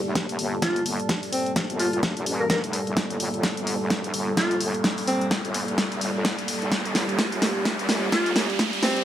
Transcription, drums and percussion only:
0.15 kick loud
0.15 snare soft
0.15 closed hi-hat medium
0.29 closed hi-hat medium
0.39 open hi-hat loud
0.62 kick loud
0.62 snare soft
0.62 closed hi-hat medium
0.76 closed hi-hat soft
0.86 open hi-hat loud
1.00 closed hi-hat soft
1.09 kick loud
1.09 snare medium
1.09 closed hi-hat medium
1.23 open hi-hat medium
1.33 open hi-hat loud
1.46 closed hi-hat soft
1.56 kick loud
1.56 snare medium
1.56 closed hi-hat medium
1.70 closed hi-hat medium
1.80 open hi-hat loud
1.93 closed hi-hat soft
2.03 kick loud
2.03 snare medium
2.03 closed hi-hat medium
2.17 closed hi-hat medium
2.26 open hi-hat loud
2.50 kick loud
2.50 snare medium
2.50 closed hi-hat medium
2.64 closed hi-hat soft
2.73 open hi-hat loud
2.87 closed hi-hat soft
2.97 kick loud
2.97 snare medium
2.97 closed hi-hat medium
3.10 closed hi-hat soft
3.20 open hi-hat loud
3.34 closed hi-hat soft
3.43 kick loud
3.43 snare medium
3.43 closed hi-hat medium
3.57 closed hi-hat medium
3.67 open hi-hat loud
3.90 kick loud
3.90 snare medium
3.90 closed hi-hat medium
4.04 closed hi-hat soft
4.14 open hi-hat loud
4.37 kick loud
4.37 snare medium
4.37 closed hi-hat medium
4.51 closed hi-hat soft
4.61 open hi-hat loud
4.74 closed hi-hat soft
4.84 kick loud
4.84 snare medium
4.84 closed hi-hat medium
4.98 open hi-hat medium
5.08 open hi-hat loud
5.21 closed hi-hat soft
5.31 kick loud
5.31 snare medium
5.31 closed hi-hat medium
5.45 closed hi-hat soft
5.54 open hi-hat loud
5.68 closed hi-hat soft
5.78 kick loud
5.78 snare medium
5.78 closed hi-hat medium
5.92 closed hi-hat soft
6.01 open hi-hat loud
6.25 kick loud
6.25 snare medium
6.25 closed hi-hat medium
6.39 closed hi-hat soft
6.48 open hi-hat loud
6.62 closed hi-hat soft
6.72 kick loud
6.72 snare medium
6.72 closed hi-hat medium
6.85 closed hi-hat soft
6.95 snare medium
6.95 open hi-hat loud
7.09 closed hi-hat soft
7.19 kick loud
7.19 snare medium
7.19 closed hi-hat medium
7.32 closed hi-hat medium
7.42 snare medium
7.42 open hi-hat loud
7.65 kick loud
7.65 snare medium
7.65 closed hi-hat medium
7.79 closed hi-hat soft
7.89 snare medium
7.89 open hi-hat loud
8.12 kick loud
8.12 snare medium
8.12 closed hi-hat medium
8.26 closed hi-hat soft
8.36 snare medium
8.36 open hi-hat loud
8.50 closed hi-hat soft
8.59 kick loud
8.59 snare medium
8.59 closed hi-hat medium
8.73 open hi-hat medium
8.83 snare medium
8.83 open hi-hat loud
8.96 closed hi-hat soft

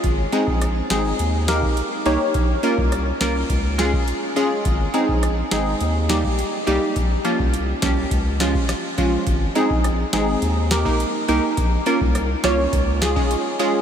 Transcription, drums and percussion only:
0.04 kick loud
0.04 closed hi-hat medium
0.32 closed hi-hat medium
0.47 kick medium
0.61 cross-stick medium
0.61 closed hi-hat medium
0.90 snare loud
0.90 closed hi-hat soft
1.19 closed hi-hat medium
1.48 snare loud
1.48 closed hi-hat soft
1.62 kick loud
1.77 closed hi-hat medium
2.06 closed hi-hat medium
2.34 kick loud
2.34 closed hi-hat medium
2.63 closed hi-hat medium
2.78 kick medium
2.92 cross-stick medium
2.92 closed hi-hat medium
3.21 snare loud
3.21 closed hi-hat soft
3.50 kick medium
3.50 closed hi-hat medium
3.79 snare loud
3.79 closed hi-hat soft
3.93 kick loud
4.08 closed hi-hat medium
4.36 closed hi-hat medium
4.65 kick loud
4.65 closed hi-hat medium
4.94 closed hi-hat medium
5.09 kick medium
5.23 cross-stick medium
5.23 closed hi-hat medium
5.51 snare loud
5.51 closed hi-hat soft
5.81 closed hi-hat medium
6.09 snare loud
6.09 closed hi-hat soft
6.24 kick loud
6.39 closed hi-hat medium
6.67 closed hi-hat medium
6.96 kick loud
6.96 closed hi-hat medium
7.25 closed hi-hat medium
7.39 kick medium
7.54 closed hi-hat medium
7.82 kick medium
7.82 snare loud
7.82 closed hi-hat soft
8.11 kick medium
8.11 closed hi-hat medium
8.40 snare loud
8.40 closed hi-hat soft
8.55 kick loud
8.69 cross-stick medium
8.69 snare medium
8.69 closed hi-hat medium
8.98 kick medium
8.98 closed hi-hat medium
9.27 kick loud
9.27 closed hi-hat medium
9.55 closed hi-hat medium
9.70 kick medium
9.84 cross-stick medium
9.84 closed hi-hat medium
10.13 snare loud
10.13 closed hi-hat medium
10.42 closed hi-hat medium
10.71 snare loud
10.71 closed hi-hat medium
10.85 kick loud
11.00 closed hi-hat medium
11.28 closed hi-hat medium
11.57 kick loud
11.57 closed hi-hat medium
11.86 closed hi-hat medium
12.01 kick loud
12.15 cross-stick medium
12.15 closed hi-hat medium
12.44 snare loud
12.44 closed hi-hat soft
12.73 kick medium
12.73 closed hi-hat medium
13.02 snare loud
13.02 closed hi-hat medium
13.16 kick loud
13.31 closed hi-hat medium
13.59 closed hi-hat medium

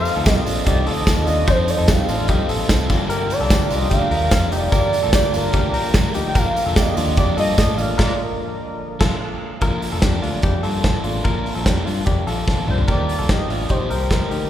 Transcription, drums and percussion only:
0.05 open hi-hat medium
0.05 tambourine medium
0.26 kick loud
0.26 snare loud
0.26 closed hi-hat medium
0.26 tambourine medium
0.46 open hi-hat medium
0.46 tambourine medium
0.66 kick loud
0.66 closed hi-hat medium
0.66 tambourine soft
0.87 open hi-hat medium
1.07 kick loud
1.07 snare loud
1.07 closed hi-hat medium
1.07 tambourine medium
1.27 open hi-hat medium
1.27 tambourine medium
1.48 kick loud
1.48 closed hi-hat medium
1.48 tambourine soft
1.68 open hi-hat medium
1.68 tambourine medium
1.88 kick loud
1.88 snare loud
1.88 closed hi-hat medium
1.88 tambourine medium
2.09 open hi-hat medium
2.09 tambourine medium
2.28 kick loud
2.28 closed hi-hat medium
2.28 tambourine soft
2.49 open hi-hat medium
2.49 tambourine soft
2.69 kick loud
2.69 snare loud
2.69 closed hi-hat medium
2.69 tambourine medium
2.90 kick loud
2.90 tambourine medium
2.90 crash medium
3.10 closed hi-hat medium
3.10 tambourine medium
3.30 open hi-hat medium
3.30 tambourine medium
3.50 kick loud
3.50 snare loud
3.50 closed hi-hat medium
3.50 tambourine medium
3.71 open hi-hat medium
3.71 tambourine medium
3.91 kick loud
3.91 closed hi-hat medium
3.91 tambourine soft
4.11 open hi-hat medium
4.31 kick loud
4.31 snare loud
4.31 closed hi-hat medium
4.31 tambourine medium
4.52 open hi-hat medium
4.52 tambourine soft
4.72 kick loud
4.72 closed hi-hat medium
4.72 tambourine medium
4.93 open hi-hat medium
4.93 tambourine medium
5.13 kick loud
5.13 snare loud
5.13 closed hi-hat medium
5.13 tambourine medium
5.34 open hi-hat medium
5.34 tambourine medium
5.53 kick loud
5.53 closed hi-hat medium
5.53 tambourine soft
5.74 open hi-hat medium
5.94 kick loud
5.94 snare loud
5.94 closed hi-hat medium
5.94 tambourine medium
6.14 open hi-hat medium
6.14 tambourine soft
6.35 kick loud
6.35 closed hi-hat medium
6.35 tambourine medium
6.56 open hi-hat medium
6.56 tambourine medium
6.76 kick loud
6.76 snare loud
6.76 closed hi-hat medium
6.76 tambourine medium
6.97 open hi-hat medium
6.97 tambourine medium
7.17 kick loud
7.17 closed hi-hat medium
7.17 tambourine soft
7.38 open hi-hat medium
7.38 tambourine soft
7.58 kick loud
7.58 snare loud
7.58 closed hi-hat medium
7.58 tambourine medium
7.78 open hi-hat medium
7.78 tambourine soft
7.99 kick loud
7.99 snare medium
7.99 crash medium
9.00 kick loud
9.00 snare medium
9.00 crash medium
9.61 kick loud
9.61 closed hi-hat medium
9.82 open hi-hat medium
10.02 kick loud
10.02 snare loud
10.02 closed hi-hat medium
10.23 open hi-hat medium
10.42 kick loud
10.42 closed hi-hat medium
10.63 open hi-hat medium
10.84 kick loud
10.84 snare medium
10.84 closed hi-hat medium
11.04 open hi-hat medium
11.25 kick medium
11.25 closed hi-hat medium
11.46 open hi-hat medium
11.66 kick loud
11.66 snare loud
11.66 closed hi-hat medium
11.87 open hi-hat medium
12.06 kick medium
12.06 closed hi-hat medium
12.27 open hi-hat medium
12.48 kick loud
12.48 snare soft
12.58 high tom medium
12.68 mid tom medium
12.78 floor tom medium
12.88 kick loud
12.88 closed hi-hat medium
13.09 open hi-hat medium
13.29 kick loud
13.29 snare loud
13.29 closed hi-hat medium
13.50 open hi-hat medium
13.69 kick medium
13.69 closed hi-hat medium
13.90 open hi-hat medium
14.11 kick loud
14.11 snare medium
14.11 closed hi-hat medium
14.31 open hi-hat medium

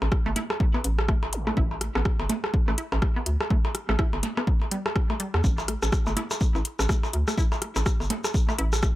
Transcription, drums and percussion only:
0.02 cross-stick soft
0.02 percussion blips medium
0.12 kick loud
0.12 cross-stick medium
0.26 percussion blips soft
0.36 closed hi-hat medium
0.36 percussion blips medium
0.50 cross-stick medium
0.50 percussion blips medium
0.60 kick loud
0.74 percussion blips medium
0.84 closed hi-hat medium
0.99 cross-stick medium
0.99 percussion blips soft
1.09 kick loud
1.09 cross-stick medium
1.23 percussion blips medium
1.33 closed hi-hat medium
1.47 cross-stick soft
1.47 percussion blips medium
1.57 kick loud
1.71 percussion blips soft
1.81 cross-stick medium
1.81 closed hi-hat medium
1.95 cross-stick medium
1.95 percussion blips medium
2.05 kick loud
2.05 cross-stick medium
2.20 percussion blips medium
2.30 closed hi-hat medium
2.30 percussion blips medium
2.44 cross-stick medium
2.44 percussion blips soft
2.54 kick loud
2.68 percussion blips medium
2.78 closed hi-hat medium
2.92 cross-stick soft
2.92 percussion blips medium
3.02 kick loud
3.02 cross-stick medium
3.16 percussion blips soft
3.26 closed hi-hat medium
3.41 cross-stick medium
3.41 percussion blips medium
3.50 kick loud
3.65 percussion blips medium
3.75 cross-stick medium
3.75 closed hi-hat medium
3.89 cross-stick medium
3.89 percussion blips soft
3.99 kick loud
3.99 cross-stick loud
4.13 percussion blips medium
4.23 closed hi-hat medium
4.23 percussion blips medium
4.37 cross-stick soft
4.37 percussion blips medium
4.47 kick loud
4.62 percussion blips soft
4.71 closed hi-hat medium
4.86 cross-stick medium
4.86 percussion blips medium
4.96 kick loud
4.96 cross-stick medium
5.10 percussion blips medium
5.20 closed hi-hat medium
5.34 cross-stick medium
5.34 percussion blips soft
5.44 kick loud
5.44 shekere medium
5.58 percussion blips medium
5.58 shekere soft
5.68 cross-stick medium
5.68 closed hi-hat medium
5.83 cross-stick medium
5.83 percussion blips soft
5.83 shekere medium
5.92 kick loud
5.92 cross-stick loud
5.92 shekere medium
6.07 percussion blips medium
6.07 shekere soft
6.17 closed hi-hat medium
6.17 percussion blips medium
6.31 cross-stick soft
6.31 percussion blips medium
6.31 shekere medium
6.41 kick loud
6.41 shekere medium
6.55 percussion blips soft
6.55 shekere soft
6.65 closed hi-hat loud
6.79 cross-stick medium
6.79 percussion blips medium
6.79 shekere medium
6.89 kick loud
6.89 cross-stick loud
6.89 shekere medium
7.03 percussion blips medium
7.03 shekere soft
7.13 closed hi-hat medium
7.28 cross-stick medium
7.28 percussion blips soft
7.28 shekere medium
7.38 kick loud
7.38 shekere medium
7.52 percussion blips medium
7.52 shekere soft
7.62 cross-stick medium
7.62 closed hi-hat medium
7.76 cross-stick soft
7.76 percussion blips medium
7.76 shekere medium
7.86 kick loud
7.86 cross-stick loud
7.86 shekere medium
8.00 percussion blips soft
8.00 shekere soft
8.10 closed hi-hat loud
8.10 percussion blips medium
8.24 cross-stick medium
8.24 percussion blips medium
8.24 shekere medium
8.34 kick loud
8.34 shekere medium
8.49 percussion blips medium
8.49 shekere soft
8.59 closed hi-hat loud
8.73 cross-stick medium
8.73 percussion blips soft
8.73 shekere medium
8.82 kick loud
8.82 cross-stick loud
8.82 shekere medium

